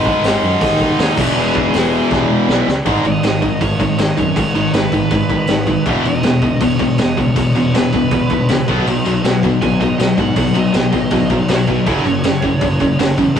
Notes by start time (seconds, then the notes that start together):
Already playing: G#1 G#2 D#3 G#3 B3 B4
0.05 kick
0.24 G#1 C#4 C#5, snare, open hi-hat
0.43 F#2
0.61 D#2 D#4 D#5, kick, open hi-hat
0.80 kick
0.99 D#2 D#4 D#5, snare, open hi-hat
1.17 E1 E2 B2 E3 B3 B4, kick, crash
1.37 E1 G#3 G#4
1.55 E1, kick
1.73 E1, snare, open hi-hat
2.11 E1, kick, snare
2.47 B1 E2 B2 E3, snare
2.68 C#2, snare
2.86 G#1 G#2 D#3 G#3, kick, crash
3.05 G#1 G#2 D#3 D#5, crash
3.23 G#1 G#2 D#3, snare, crash
3.42 G#2 D#3, kick, crash
3.61 G#1 G#2 D#3 C#5, kick, crash
3.80 G#2 D#3 C#5, kick, crash
3.98 G#1 G#2 D#3 D#5, snare, crash
4.17 F#2 G#2 D#3 C#5, kick, crash
4.36 G#1 G#2 D#3, kick, crash
4.55 G#1 G#2 D#3, crash
4.73 G#1 G#2 D#3 B4, snare, crash
4.92 G#1 G#2 D#3, kick, crash
5.11 G#1 G#2 D#3, kick, crash
5.29 G#2 D#3, kick, crash
5.47 G#1 G#2 D#3, snare, crash
5.67 G#2 D#3, kick, crash
5.86 E1 E2 B2 E3, kick, crash
6.04 E1 E2 B2 D#5, crash
6.23 E1 E2 B2, snare, crash
6.42 E2 B2, kick, crash
6.60 E1 E2 B2 C#5, kick, crash
6.79 E2 B2 C#5, kick, crash
6.98 E1 E2 B2 D#5, snare, crash
7.17 C#2 E2 B2 C#5, kick, crash
7.36 E1 E2 B2, kick, crash
7.55 E1 E2 B2, crash
7.74 E1 E2 B2 B4, snare, crash
7.93 E1 E2 B2, kick, crash
8.11 E1 E2 B2, kick, crash
8.30 E2 B2, kick, crash
8.49 C#2 E2 B2, snare, crash
8.68 B1 B2 F#3 B3, kick, crash
8.86 B1 B2 F#3, crash
9.05 B1 B2 F#3, crash
9.24 B1 B2 F#3, snare, crash
9.43 B2 F#3, kick, crash
9.61 B1 B2 F#3 G#5, kick, crash
9.80 B2 F#3 D#5, kick, crash
9.98 B1 B2 F#3, snare, crash
10.18 G#2 B2 F#3 F#5, kick, crash
10.36 B1 B2 F#3 F#5, kick, crash
10.55 B1 B2 F#3 D#5, crash
10.74 B1 B2 F#3, snare, crash
10.92 B1 B2 F#3, kick, crash
11.11 B1 B2 F#3, kick, crash
11.30 B2 F#3, kick, crash
11.48 B1 B2 F#3 C#5 F#5, snare, crash
11.67 B2 F#3 B4 D#5, kick, crash
11.86 F#1 F#2 C#3 F#3 G#4 C#5, kick, crash
12.03 F#1 F#2 C#3, crash
12.07 C#5
12.23 F#1 F#2 C#3, snare, crash
12.42 F#2 C#3, kick, crash
12.61 F#1 F#2 C#3, kick, crash
12.80 F#2 C#3, kick, crash
12.98 F#1 F#2 C#3, snare, crash
13.17 E2 F#2 C#3, kick, crash
13.36 F#1 F#2 C#3, kick, crash